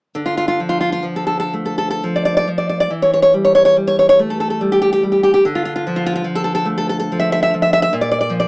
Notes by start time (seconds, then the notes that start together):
0.15 D3
0.26 F4
0.37 F4
0.48 F4
0.60 F3
0.69 F4
0.81 F4
0.92 F4
1.03 F3
1.16 A4
1.27 A4
1.40 A4
1.53 A3
1.65 A4
1.78 A4
1.91 A4
2.04 F3
2.16 D5
2.25 D5
2.37 D5
2.48 F3
2.58 D5
2.69 D5
2.80 D5
2.90 E3
3.02 C#5
3.14 C#5
3.22 C#5
3.34 G3
3.45 C#5
3.55 C#5
3.65 C#5
3.76 G3
3.87 C#5
3.99 C#5
4.09 C#5
4.19 A3
4.30 A4
4.40 A4
4.50 A4
4.61 G3
4.72 G4
4.82 G4
4.93 G4
5.03 G3
5.12 G4
5.23 G4
5.34 G4
5.45 D3
5.55 F4
5.65 F4
5.76 F4
5.87 F3
5.96 F4
6.06 F4
6.15 F4
6.24 F3
6.35 A4
6.44 A4
6.55 A4
6.65 A3
6.78 A4
6.89 A4
7.00 A4
7.12 F3
7.20 E5
7.32 E5
7.43 E5
7.54 F3
7.62 E5
7.73 E5
7.82 E5
7.93 A#2
8.01 D5
8.11 D5
8.21 D5
8.30 F3
8.40 D5